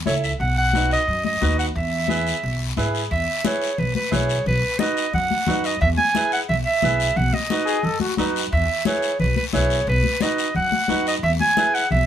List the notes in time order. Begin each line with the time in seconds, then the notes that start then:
0.06 C#2 E4 A4 C#5 E5, high conga, short guiro
0.24 E5, short guiro
0.40 B1 F#5, long guiro
0.58 F#5
0.73 D#4 F#4 B4, high conga, short guiro
0.91 D#5, short guiro
1.08 F#2, long guiro
1.24 D#5, high conga
1.41 D#2 D#4 F#4 B4, high conga, short guiro
1.59 F#5, short guiro
1.75 E2 E5, long guiro
2.08 E4 G#4 B4, high conga, short guiro
2.27 short guiro
2.43 B1, long guiro
2.77 G#2 E4 G#4 B4, high conga, short guiro
2.95 short guiro
3.11 E2 E5, high conga, long guiro
3.44 E4 G#4 B4 C#5, high conga, short guiro
3.62 short guiro
3.78 B1 B4, high conga, low conga, long guiro
3.95 B4, high conga
4.11 B1 E4 G#4 B4 C#5, high conga, low conga, short guiro
4.29 short guiro
4.46 B1 B4, high conga, low conga, long guiro
4.79 D#4 F#4 B4 D#5, high conga, short guiro
4.97 short guiro
5.13 F#2 F#5, high conga, low conga, long guiro
5.31 high conga
5.47 F#2 D#4 F#4 B4, high conga, low conga, short guiro
5.64 D#5, short guiro
5.81 E2 E5, high conga, low conga, long guiro
5.97 G#5, high conga
6.15 E4 G#4 B4, high conga, short guiro
6.32 F#5, short guiro
6.49 B1 E5, high conga, low conga, long guiro
6.65 E5
6.82 B1 E4 G#4 B4, high conga, low conga, short guiro
7.00 short guiro
7.16 B1 F#5, high conga, low conga, long guiro
7.33 D#5, high conga
7.50 D#4 F#4 B4, high conga, short guiro
7.66 G#4, short guiro
7.83 F#2 A4, high conga, low conga, long guiro
8.00 F#4, high conga
8.17 F#2 D#4 F#4 B4, high conga, short guiro
8.36 short guiro
8.52 E2 E5, high conga, long guiro
8.85 E4 G#4 B4 C#5, high conga, short guiro
9.02 short guiro
9.20 B1 B4, high conga, low conga, long guiro
9.36 B4, high conga
9.53 B1 E4 G#4 B4 C#5, high conga, short guiro
9.70 short guiro
9.87 B1 B4, high conga, long guiro
10.04 high conga
10.21 D#4 F#4 B4 D#5, high conga, short guiro
10.38 short guiro
10.55 F#2 F#5, high conga, low conga, long guiro
10.72 high conga
10.88 F#2 D#4 F#4 B4, high conga, short guiro
11.07 D#5, short guiro
11.23 E2 E5, high conga, long guiro
11.40 G#5, high conga
11.57 E4 G#4 B4, high conga, short guiro
11.74 F#5, short guiro
11.91 B1 E5, high conga, low conga, long guiro